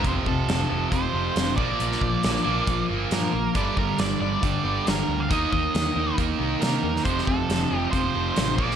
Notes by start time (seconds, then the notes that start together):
0.04 F1 F2 C3 F3 C5, kick, closed hi-hat
0.26 F1 F2 C3 A4, kick
0.48 F1 F2 C3, snare, closed hi-hat
0.70 F1 F2 C3 F3
0.91 F1 F2 C3 F3 C5, kick, closed hi-hat
1.13 F1 F2 C3 F3
1.36 F1 F2 C3, snare, closed hi-hat
1.56 A#1 A#2 F3 A#3 D5, kick
1.80 A#1 A#2 F3 A#3, closed hi-hat
1.92 snare
2.01 A#1 A#2 F3, kick
2.23 A#1 A#2 F3, snare, closed hi-hat
2.36 snare
2.46 A#1 A#2 F3 A#3
2.67 A#1 A#2 F3, kick, closed hi-hat
2.89 G1 A#2 F3 A#3
3.11 G2 A#2 F3 A#4, snare, closed hi-hat
3.32 A#1 A#2 F3
3.55 G1 G2 D3 G3 D5, kick, closed hi-hat
3.76 G1 G2 D3 A#4, kick
3.98 G1 G2 D3 D5, snare, closed hi-hat
4.20 G1 G2 D3 G3 D5
4.42 G1 G2 D3 G3, kick, closed hi-hat
4.64 G1 G2 D3 G3
4.85 G1 G2 D3 A#4, snare, closed hi-hat
5.07 D2 G2 D3
5.20 F5
5.30 D#2 D#3 A#3 D#4 D#5, kick, closed hi-hat
5.52 D#2 D#3 A#3 D#5, kick
5.74 D#2 D#3 A#3, snare, closed hi-hat
5.96 D#2 D#3 A#3 D#4
6.18 D#2 D#3 A#3 D#4, kick, closed hi-hat
6.39 C2 D#3 A#3 D#4
6.61 C3 D#3 A#3 A#4, snare, closed hi-hat
6.83 E2 D#3 A#3
6.96 snare
7.05 F1 F2 C3 F3 C5, kick, closed hi-hat
7.18 snare
7.27 F1 F2 C3 A4, kick
7.49 F1 F2 C3, snare, closed hi-hat
7.71 F1 F2 C3 F3
7.79 G4
7.91 F1 F2 C3 F3 C5, kick, closed hi-hat
8.14 F1 F2 C3 F3
8.36 A1 F2 C3, snare, closed hi-hat
8.56 A#1 A#2 F3 A#3 D5, kick
8.71 snare